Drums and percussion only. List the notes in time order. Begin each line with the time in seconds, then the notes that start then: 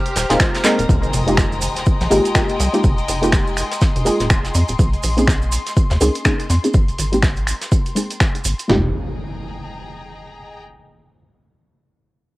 0.06 closed hi-hat, maracas
0.16 snare, closed hi-hat, open hi-hat, maracas
0.30 snare, closed hi-hat, maracas
0.40 finger snap, kick, snare, closed hi-hat, maracas
0.55 snare, closed hi-hat, maracas
0.64 clap, closed hi-hat, open hi-hat, maracas
0.79 closed hi-hat, maracas
0.89 kick, closed hi-hat, maracas
1.03 closed hi-hat, maracas
1.13 open hi-hat, maracas
1.28 closed hi-hat, maracas
1.37 finger snap, kick, snare, closed hi-hat, maracas
1.52 maracas
1.61 closed hi-hat, open hi-hat, maracas
1.76 snare, closed hi-hat, maracas
1.86 kick, closed hi-hat, maracas
2.01 snare, closed hi-hat, maracas
2.11 closed hi-hat, open hi-hat, maracas
2.25 closed hi-hat, maracas
2.35 finger snap, kick, snare, closed hi-hat, maracas
2.49 closed hi-hat, maracas
2.59 snare, closed hi-hat, open hi-hat, maracas
2.74 closed hi-hat, maracas
2.83 kick, closed hi-hat, maracas
2.98 closed hi-hat, maracas
3.08 closed hi-hat, open hi-hat, maracas
3.22 closed hi-hat, maracas
3.32 finger snap, kick, snare, closed hi-hat, maracas
3.47 maracas
3.57 finger snap, closed hi-hat, open hi-hat, maracas
3.71 snare, closed hi-hat, maracas
3.81 kick, snare, closed hi-hat, maracas
3.96 closed hi-hat, maracas
4.06 closed hi-hat, open hi-hat, maracas
4.20 snare, closed hi-hat, maracas
4.30 finger snap, kick, closed hi-hat, maracas
4.44 snare, closed hi-hat, maracas
4.54 closed hi-hat, open hi-hat, maracas
4.68 closed hi-hat, maracas
4.79 kick, closed hi-hat, maracas
4.93 closed hi-hat, maracas
5.03 open hi-hat, maracas
5.18 closed hi-hat, maracas
5.28 finger snap, kick, snare, closed hi-hat, maracas
5.42 maracas
5.52 closed hi-hat, open hi-hat, maracas
5.66 snare, closed hi-hat, maracas
5.76 kick, closed hi-hat, maracas
5.90 snare, closed hi-hat, maracas
6.01 closed hi-hat, open hi-hat, maracas
6.15 closed hi-hat, maracas
6.25 finger snap, kick, snare, closed hi-hat, maracas
6.40 closed hi-hat, maracas
6.50 snare, closed hi-hat, open hi-hat, maracas
6.64 closed hi-hat, maracas
6.74 kick, closed hi-hat, maracas
6.88 closed hi-hat, maracas
6.98 closed hi-hat, open hi-hat, maracas
7.13 closed hi-hat, maracas
7.23 finger snap, kick, snare, closed hi-hat, maracas
7.36 closed hi-hat, maracas
7.47 finger snap, closed hi-hat, open hi-hat, maracas
7.61 snare, closed hi-hat, maracas
7.72 kick, closed hi-hat, maracas
7.86 closed hi-hat, maracas
7.96 closed hi-hat, open hi-hat, maracas
8.11 closed hi-hat, maracas
8.20 finger snap, kick, snare, closed hi-hat, maracas
8.35 closed hi-hat, maracas
8.45 closed hi-hat, open hi-hat, maracas
8.59 closed hi-hat, maracas
8.70 snare, floor tom